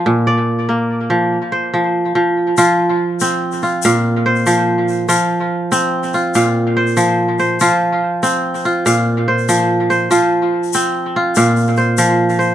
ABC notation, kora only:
X:1
M:12/8
L:1/8
Q:3/8=96
K:Bb
V:1 name="Kora"
F d3 z3 c3 z2 | F3 z2 F f2 c3 z | F3 z2 F f2 c3 c | F3 z2 F f2 c3 c |
F3 z2 F f2 c3 c |]
V:2 name="Kora" clef=bass
B,,2 z B,2 F, z2 F,2 F,2 | F,2 z C2 z B,,2 z F,2 z | F,2 z C2 z B,,2 z F,2 z | F,2 z C2 z B,,2 z F,2 z |
F,2 z C2 z B,,2 z F,2 z |]